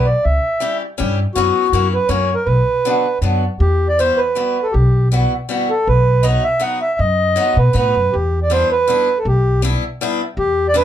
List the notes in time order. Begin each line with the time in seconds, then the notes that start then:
Already playing: B1
0.05 D5
0.24 C#2 E5
0.60 G3 C#4 E4 G4
0.98 G2 G3 C#4 E4 G4
1.35 F#2 B3 C#4 E4 F#4
1.73 F#2 A#3 C#4 E4 F#4
1.94 B4
2.08 F#2 A#3 C#4 E4 F#4 C#5
2.35 A#4
2.46 B1 B4
2.85 F#3 B3 D4 F#4
3.22 F#2 F#3 B3 D4 F#4
3.60 E2 G4
3.88 D5
3.99 G3 B3 E4 F#4 C5
4.17 B4
4.35 G3 B3 E4 F#4
4.63 A4
4.72 B1 G4
5.12 G3 B3 E4 F#4
5.49 G3 B3 E4 F#4
5.70 A4
5.87 B1 B4
6.23 F#3 B3 D#4 F#4 D#5
6.44 E5
6.60 F#3 B3 D#4 F#4 F#5
6.82 E5
6.99 F#2 D#5
7.36 F#3 B3 D#4 F#4
7.57 B2 B4
7.73 A2 F#3 B3 D#4 F#4
7.77 B4
7.95 F#2
8.13 E2 G4
8.43 D5
8.50 G3 B3 D4 E4 C5
8.71 B4
8.88 G3 B3 D4 E4
9.18 A4
9.25 B1 G4
9.62 G3 B3 D4 E4
10.01 G3 B3 D4 E4
10.37 E2 G4
10.68 D5
10.74 G3 B3 D4 E4 B4